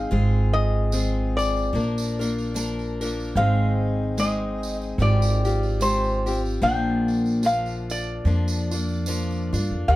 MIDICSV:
0, 0, Header, 1, 5, 480
1, 0, Start_track
1, 0, Tempo, 814111
1, 65, Time_signature, 4, 2, 24, 8
1, 5871, End_track
2, 0, Start_track
2, 0, Title_t, "Resonator guitar played with a steel bar"
2, 0, Program_c, 0, 25
2, 0, Note_on_c, 0, 77, 84
2, 306, Note_off_c, 0, 77, 0
2, 315, Note_on_c, 0, 75, 79
2, 804, Note_off_c, 0, 75, 0
2, 806, Note_on_c, 0, 74, 79
2, 1475, Note_off_c, 0, 74, 0
2, 1987, Note_on_c, 0, 77, 71
2, 2471, Note_off_c, 0, 77, 0
2, 2474, Note_on_c, 0, 75, 71
2, 2925, Note_off_c, 0, 75, 0
2, 2959, Note_on_c, 0, 74, 85
2, 3433, Note_on_c, 0, 72, 79
2, 3446, Note_off_c, 0, 74, 0
2, 3780, Note_off_c, 0, 72, 0
2, 3910, Note_on_c, 0, 79, 78
2, 4399, Note_on_c, 0, 77, 72
2, 4402, Note_off_c, 0, 79, 0
2, 4665, Note_on_c, 0, 74, 82
2, 4671, Note_off_c, 0, 77, 0
2, 5599, Note_off_c, 0, 74, 0
2, 5826, Note_on_c, 0, 79, 93
2, 5871, Note_off_c, 0, 79, 0
2, 5871, End_track
3, 0, Start_track
3, 0, Title_t, "Steel-string acoustic guitar"
3, 0, Program_c, 1, 25
3, 0, Note_on_c, 1, 60, 45
3, 0, Note_on_c, 1, 63, 45
3, 0, Note_on_c, 1, 68, 48
3, 61, Note_off_c, 1, 60, 0
3, 64, Note_on_c, 1, 56, 67
3, 65, Note_off_c, 1, 68, 0
3, 68, Note_off_c, 1, 63, 0
3, 68, Note_on_c, 1, 60, 68
3, 70, Note_on_c, 1, 65, 65
3, 74, Note_on_c, 1, 68, 72
3, 538, Note_off_c, 1, 56, 0
3, 542, Note_off_c, 1, 60, 0
3, 545, Note_on_c, 1, 56, 49
3, 547, Note_off_c, 1, 65, 0
3, 549, Note_off_c, 1, 68, 0
3, 549, Note_on_c, 1, 60, 59
3, 553, Note_on_c, 1, 65, 55
3, 558, Note_on_c, 1, 68, 51
3, 1017, Note_off_c, 1, 56, 0
3, 1019, Note_on_c, 1, 53, 56
3, 1026, Note_off_c, 1, 60, 0
3, 1028, Note_off_c, 1, 65, 0
3, 1029, Note_on_c, 1, 58, 54
3, 1031, Note_off_c, 1, 68, 0
3, 1031, Note_on_c, 1, 62, 56
3, 1035, Note_on_c, 1, 70, 57
3, 1285, Note_off_c, 1, 70, 0
3, 1291, Note_off_c, 1, 62, 0
3, 1292, Note_off_c, 1, 53, 0
3, 1292, Note_on_c, 1, 70, 43
3, 1295, Note_off_c, 1, 58, 0
3, 1298, Note_on_c, 1, 62, 39
3, 1303, Note_on_c, 1, 58, 37
3, 1308, Note_on_c, 1, 53, 36
3, 1492, Note_off_c, 1, 53, 0
3, 1498, Note_off_c, 1, 58, 0
3, 1499, Note_on_c, 1, 53, 51
3, 1501, Note_off_c, 1, 62, 0
3, 1502, Note_off_c, 1, 70, 0
3, 1505, Note_on_c, 1, 58, 49
3, 1508, Note_on_c, 1, 62, 60
3, 1513, Note_on_c, 1, 70, 61
3, 1767, Note_off_c, 1, 70, 0
3, 1772, Note_off_c, 1, 53, 0
3, 1773, Note_off_c, 1, 62, 0
3, 1774, Note_on_c, 1, 70, 56
3, 1775, Note_off_c, 1, 58, 0
3, 1780, Note_on_c, 1, 62, 58
3, 1782, Note_on_c, 1, 58, 48
3, 1786, Note_on_c, 1, 53, 51
3, 1983, Note_off_c, 1, 70, 0
3, 1983, Note_on_c, 1, 44, 66
3, 1984, Note_off_c, 1, 53, 0
3, 1985, Note_on_c, 1, 51, 73
3, 1986, Note_off_c, 1, 62, 0
3, 1987, Note_off_c, 1, 58, 0
3, 1987, Note_on_c, 1, 56, 68
3, 1990, Note_on_c, 1, 60, 75
3, 1990, Note_on_c, 1, 68, 75
3, 1991, Note_on_c, 1, 63, 84
3, 2454, Note_off_c, 1, 56, 0
3, 2458, Note_off_c, 1, 60, 0
3, 2461, Note_on_c, 1, 56, 54
3, 2463, Note_off_c, 1, 44, 0
3, 2464, Note_off_c, 1, 51, 0
3, 2465, Note_on_c, 1, 60, 58
3, 2466, Note_off_c, 1, 68, 0
3, 2467, Note_off_c, 1, 63, 0
3, 2473, Note_on_c, 1, 63, 60
3, 2475, Note_on_c, 1, 68, 62
3, 2934, Note_off_c, 1, 56, 0
3, 2941, Note_off_c, 1, 60, 0
3, 2941, Note_on_c, 1, 56, 53
3, 2948, Note_off_c, 1, 63, 0
3, 2948, Note_on_c, 1, 60, 58
3, 2949, Note_off_c, 1, 68, 0
3, 2952, Note_on_c, 1, 65, 58
3, 2956, Note_on_c, 1, 67, 61
3, 3205, Note_off_c, 1, 67, 0
3, 3212, Note_off_c, 1, 65, 0
3, 3212, Note_on_c, 1, 67, 48
3, 3213, Note_off_c, 1, 56, 0
3, 3217, Note_off_c, 1, 60, 0
3, 3219, Note_on_c, 1, 65, 48
3, 3227, Note_on_c, 1, 60, 43
3, 3417, Note_on_c, 1, 56, 46
3, 3418, Note_off_c, 1, 60, 0
3, 3420, Note_off_c, 1, 65, 0
3, 3422, Note_off_c, 1, 67, 0
3, 3425, Note_on_c, 1, 60, 47
3, 3427, Note_on_c, 1, 65, 53
3, 3431, Note_on_c, 1, 67, 58
3, 3684, Note_off_c, 1, 67, 0
3, 3691, Note_on_c, 1, 67, 49
3, 3692, Note_off_c, 1, 56, 0
3, 3692, Note_off_c, 1, 65, 0
3, 3695, Note_off_c, 1, 60, 0
3, 3699, Note_on_c, 1, 65, 40
3, 3703, Note_on_c, 1, 60, 45
3, 3901, Note_on_c, 1, 46, 68
3, 3902, Note_off_c, 1, 67, 0
3, 3904, Note_off_c, 1, 60, 0
3, 3904, Note_off_c, 1, 65, 0
3, 3905, Note_on_c, 1, 53, 70
3, 3907, Note_on_c, 1, 58, 68
3, 3908, Note_on_c, 1, 62, 84
3, 3911, Note_on_c, 1, 65, 78
3, 4371, Note_off_c, 1, 53, 0
3, 4378, Note_off_c, 1, 58, 0
3, 4378, Note_on_c, 1, 53, 51
3, 4383, Note_off_c, 1, 46, 0
3, 4384, Note_off_c, 1, 62, 0
3, 4385, Note_off_c, 1, 65, 0
3, 4385, Note_on_c, 1, 58, 54
3, 4391, Note_on_c, 1, 62, 52
3, 4392, Note_on_c, 1, 65, 58
3, 4857, Note_off_c, 1, 53, 0
3, 4862, Note_off_c, 1, 58, 0
3, 4864, Note_on_c, 1, 53, 49
3, 4868, Note_off_c, 1, 62, 0
3, 4869, Note_off_c, 1, 65, 0
3, 4869, Note_on_c, 1, 58, 46
3, 4875, Note_on_c, 1, 62, 55
3, 4877, Note_on_c, 1, 65, 57
3, 5131, Note_off_c, 1, 65, 0
3, 5136, Note_off_c, 1, 53, 0
3, 5137, Note_off_c, 1, 62, 0
3, 5138, Note_on_c, 1, 65, 40
3, 5139, Note_off_c, 1, 58, 0
3, 5144, Note_on_c, 1, 62, 37
3, 5152, Note_on_c, 1, 58, 42
3, 5346, Note_off_c, 1, 65, 0
3, 5347, Note_on_c, 1, 53, 49
3, 5348, Note_off_c, 1, 58, 0
3, 5350, Note_off_c, 1, 62, 0
3, 5355, Note_on_c, 1, 58, 50
3, 5357, Note_on_c, 1, 62, 60
3, 5362, Note_on_c, 1, 65, 55
3, 5610, Note_off_c, 1, 65, 0
3, 5617, Note_on_c, 1, 65, 52
3, 5618, Note_off_c, 1, 53, 0
3, 5618, Note_off_c, 1, 62, 0
3, 5622, Note_off_c, 1, 58, 0
3, 5625, Note_on_c, 1, 62, 49
3, 5630, Note_on_c, 1, 58, 43
3, 5823, Note_off_c, 1, 58, 0
3, 5826, Note_off_c, 1, 65, 0
3, 5827, Note_on_c, 1, 51, 62
3, 5830, Note_on_c, 1, 58, 65
3, 5831, Note_off_c, 1, 62, 0
3, 5835, Note_on_c, 1, 63, 65
3, 5836, Note_on_c, 1, 67, 70
3, 5871, Note_off_c, 1, 51, 0
3, 5871, Note_off_c, 1, 58, 0
3, 5871, Note_off_c, 1, 63, 0
3, 5871, Note_off_c, 1, 67, 0
3, 5871, End_track
4, 0, Start_track
4, 0, Title_t, "Upright bass"
4, 0, Program_c, 2, 32
4, 69, Note_on_c, 2, 32, 86
4, 1002, Note_off_c, 2, 32, 0
4, 1020, Note_on_c, 2, 34, 85
4, 1958, Note_off_c, 2, 34, 0
4, 1977, Note_on_c, 2, 32, 95
4, 2917, Note_off_c, 2, 32, 0
4, 2937, Note_on_c, 2, 32, 98
4, 3877, Note_off_c, 2, 32, 0
4, 3901, Note_on_c, 2, 34, 92
4, 4840, Note_off_c, 2, 34, 0
4, 4863, Note_on_c, 2, 41, 89
4, 5593, Note_off_c, 2, 41, 0
4, 5617, Note_on_c, 2, 43, 69
4, 5712, Note_off_c, 2, 43, 0
4, 5723, Note_on_c, 2, 41, 71
4, 5817, Note_off_c, 2, 41, 0
4, 5827, Note_on_c, 2, 39, 97
4, 5871, Note_off_c, 2, 39, 0
4, 5871, End_track
5, 0, Start_track
5, 0, Title_t, "Drums"
5, 544, Note_on_c, 9, 54, 67
5, 603, Note_off_c, 9, 54, 0
5, 817, Note_on_c, 9, 54, 63
5, 876, Note_off_c, 9, 54, 0
5, 923, Note_on_c, 9, 54, 21
5, 982, Note_off_c, 9, 54, 0
5, 1032, Note_on_c, 9, 54, 23
5, 1091, Note_off_c, 9, 54, 0
5, 1167, Note_on_c, 9, 54, 69
5, 1226, Note_off_c, 9, 54, 0
5, 1304, Note_on_c, 9, 54, 63
5, 1363, Note_off_c, 9, 54, 0
5, 1405, Note_on_c, 9, 54, 22
5, 1464, Note_off_c, 9, 54, 0
5, 1509, Note_on_c, 9, 54, 85
5, 1568, Note_off_c, 9, 54, 0
5, 1645, Note_on_c, 9, 54, 20
5, 1704, Note_off_c, 9, 54, 0
5, 1775, Note_on_c, 9, 54, 58
5, 1834, Note_off_c, 9, 54, 0
5, 1885, Note_on_c, 9, 54, 20
5, 1944, Note_off_c, 9, 54, 0
5, 2464, Note_on_c, 9, 54, 69
5, 2523, Note_off_c, 9, 54, 0
5, 2731, Note_on_c, 9, 54, 59
5, 2790, Note_off_c, 9, 54, 0
5, 2839, Note_on_c, 9, 54, 23
5, 2898, Note_off_c, 9, 54, 0
5, 2943, Note_on_c, 9, 54, 22
5, 3002, Note_off_c, 9, 54, 0
5, 3078, Note_on_c, 9, 54, 69
5, 3137, Note_off_c, 9, 54, 0
5, 3213, Note_on_c, 9, 54, 57
5, 3272, Note_off_c, 9, 54, 0
5, 3320, Note_on_c, 9, 54, 22
5, 3379, Note_off_c, 9, 54, 0
5, 3424, Note_on_c, 9, 54, 75
5, 3483, Note_off_c, 9, 54, 0
5, 3558, Note_on_c, 9, 54, 21
5, 3617, Note_off_c, 9, 54, 0
5, 3695, Note_on_c, 9, 54, 54
5, 3754, Note_off_c, 9, 54, 0
5, 3804, Note_on_c, 9, 54, 24
5, 3863, Note_off_c, 9, 54, 0
5, 3904, Note_on_c, 9, 54, 21
5, 3963, Note_off_c, 9, 54, 0
5, 4175, Note_on_c, 9, 54, 24
5, 4234, Note_off_c, 9, 54, 0
5, 4279, Note_on_c, 9, 54, 23
5, 4338, Note_off_c, 9, 54, 0
5, 4381, Note_on_c, 9, 54, 69
5, 4440, Note_off_c, 9, 54, 0
5, 4516, Note_on_c, 9, 54, 23
5, 4575, Note_off_c, 9, 54, 0
5, 4657, Note_on_c, 9, 54, 65
5, 4716, Note_off_c, 9, 54, 0
5, 4867, Note_on_c, 9, 54, 21
5, 4926, Note_off_c, 9, 54, 0
5, 4998, Note_on_c, 9, 54, 70
5, 5057, Note_off_c, 9, 54, 0
5, 5138, Note_on_c, 9, 54, 66
5, 5197, Note_off_c, 9, 54, 0
5, 5239, Note_on_c, 9, 54, 21
5, 5298, Note_off_c, 9, 54, 0
5, 5342, Note_on_c, 9, 54, 88
5, 5401, Note_off_c, 9, 54, 0
5, 5486, Note_on_c, 9, 54, 23
5, 5545, Note_off_c, 9, 54, 0
5, 5623, Note_on_c, 9, 54, 61
5, 5682, Note_off_c, 9, 54, 0
5, 5871, End_track
0, 0, End_of_file